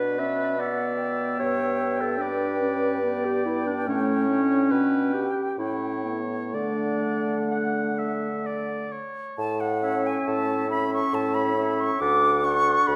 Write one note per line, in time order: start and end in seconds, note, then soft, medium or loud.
0.00 1.34 B2 medium
0.00 0.20 D4 medium
0.00 0.21 B4 medium
0.00 0.62 B4 medium
0.00 0.59 D5 medium
0.19 0.58 C#4 medium
0.19 0.61 E5 medium
0.58 2.20 B3 medium
0.58 1.39 D5 medium
0.58 2.23 E5 medium
0.58 0.99 F#5 medium
0.98 3.03 G5 medium
1.39 3.84 G2 medium
1.39 2.03 C#5 medium
2.01 2.21 A4 medium
2.18 2.62 D4 medium
2.18 3.27 B4 medium
2.18 3.88 D5 medium
2.60 3.02 C#4 medium
3.03 3.88 B3 medium
3.03 4.68 G5 medium
3.25 3.45 G4 medium
3.45 3.68 E4 medium
3.67 3.89 D4 medium
3.87 4.69 A2 medium
3.87 4.28 A3 medium
3.87 5.15 C#4 medium
3.87 4.73 C#5 medium
4.28 5.27 D4 medium
4.71 5.28 B2 medium
4.71 5.29 B4 medium
4.71 6.19 G5 medium
5.14 5.58 G4 medium
5.57 6.56 A2 medium
5.57 6.06 C#4 medium
5.57 6.21 E4 medium
5.57 6.56 C#5 medium
6.04 6.54 B3 medium
6.53 9.04 D3 medium
6.53 9.04 A3 medium
6.53 8.41 D4 medium
6.53 7.41 D5 soft
6.53 9.00 F#5 soft
7.51 8.00 F#5 medium
7.99 8.48 E5 medium
8.46 8.93 D5 medium
8.92 9.38 C#5 medium
9.38 10.17 A2 medium
9.38 9.62 A5 loud
9.60 10.08 F#5 medium
9.82 10.68 C#4 medium
9.82 10.68 C#5 medium
9.82 10.68 E5 medium
10.06 10.29 G#5 medium
10.27 11.03 A2 medium
10.27 10.70 A5 medium
10.69 11.55 C#4 medium
10.69 11.55 C#5 medium
10.69 11.56 E5 medium
10.69 10.91 B5 loud
10.93 11.16 C#6 medium
11.13 11.91 A2 medium
11.13 11.36 A5 loud
11.34 11.82 B5 medium
11.56 12.00 C#4 medium
11.56 12.01 C#5 medium
11.56 12.00 E5 medium
11.80 12.02 C#6 medium
12.00 12.77 D2 medium
12.00 12.43 D4 medium
12.00 12.44 A4 medium
12.00 12.44 F#5 medium
12.00 12.46 D6 medium
12.44 12.96 D4 medium
12.44 12.96 A4 medium
12.44 12.96 F#5 medium
12.44 12.89 C#6 medium
12.87 12.96 D2 medium
12.87 12.96 B5 loud